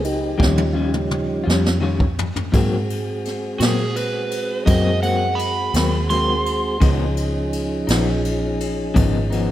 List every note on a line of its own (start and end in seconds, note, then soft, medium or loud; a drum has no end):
0.00 0.36 C#2 loud
0.04 1.43 D#4 medium
0.04 1.43 G4 loud
0.04 ride medium
0.38 1.43 D#2 medium
0.38 0.60 D#3 medium
0.38 1.46 F3 medium
0.38 0.60 G3 medium
0.38 1.45 G3 medium
0.38 0.61 C#4 medium
0.38 1.46 C#4 medium
0.38 0.61 F4 medium
0.38 kick loud
0.42 snare medium
0.58 high tom medium
0.73 0.97 G3 soft
0.73 0.96 C#4 soft
0.73 0.95 F4 medium
0.94 mid tom medium
1.11 mid tom medium
1.44 2.51 F2 loud
1.44 1.79 F3 medium
1.44 1.78 G3 soft
1.44 1.68 G3 medium
1.44 1.67 C#4 medium
1.44 1.79 C#4 medium
1.44 1.66 F4 medium
1.49 snare medium
1.66 snare medium
1.81 2.03 D#3 medium
1.81 2.03 G3 medium
1.81 2.04 C#4 medium
1.81 2.04 F4 medium
2.00 kick medium
2.19 floor tom loud
2.36 floor tom medium
2.52 2.74 G#2 medium
2.52 3.57 G#2 medium
2.52 2.75 F#3 medium
2.52 6.78 G#3 medium
2.52 2.76 A#3 medium
2.52 6.78 C4 medium
2.52 2.76 C4 medium
2.52 6.78 F#4 medium
2.52 6.79 G#4 medium
2.52 kick loud
2.52 ride medium
2.90 ride medium
3.25 snare soft
3.25 ride medium
3.59 4.64 A#2 medium
3.59 3.83 F#3 soft
3.59 3.83 A#3 soft
3.59 3.81 C4 medium
3.59 3.95 G#4 medium
3.59 snare loud
3.59 ride medium
3.96 4.66 B4 medium
3.96 ride medium
4.31 ride medium
4.66 5.72 F#2 medium
4.66 4.88 G#2 medium
4.66 4.89 F#3 medium
4.66 4.89 A#3 medium
4.66 4.90 C4 medium
4.66 5.02 D#5 medium
4.66 kick loud
4.66 ride medium
5.03 5.26 F#3 soft
5.03 5.25 A#3 soft
5.03 5.24 C4 medium
5.03 5.38 F#5 medium
5.03 ride medium
5.35 6.06 B5 medium
5.35 ride medium
5.74 6.78 D#2 medium
5.74 5.97 A#3 soft
5.74 5.96 C4 medium
5.74 snare loud
5.74 ride medium
5.78 5.98 F#3 soft
6.10 6.32 G#2 medium
6.10 6.32 F#3 medium
6.10 6.33 A#3 medium
6.10 6.33 C4 medium
6.10 6.80 C6 medium
6.10 ride medium
6.46 ride medium
6.80 7.86 C#2 medium
6.80 7.03 C#3 medium
6.80 9.52 F3 medium
6.80 7.03 F3 medium
6.80 7.04 B3 medium
6.80 9.52 C#4 medium
6.80 9.52 D#4 medium
6.80 7.04 D#4 medium
6.80 9.52 G#4 medium
6.80 kick loud
6.80 ride medium
7.17 ride medium
7.53 ride medium
7.87 8.93 A#1 loud
7.87 8.11 F3 medium
7.87 8.11 B3 medium
7.87 8.10 D#4 medium
7.87 snare loud
7.87 ride medium
8.25 ride medium
8.60 ride medium
8.94 9.52 G#1 medium
8.94 9.17 C#3 medium
8.94 9.17 F3 medium
8.94 9.17 B3 medium
8.94 9.18 D#4 medium
8.94 kick loud
8.94 ride medium
9.30 9.52 F3 soft
9.30 9.52 B3 medium
9.30 9.52 D#4 medium
9.30 ride medium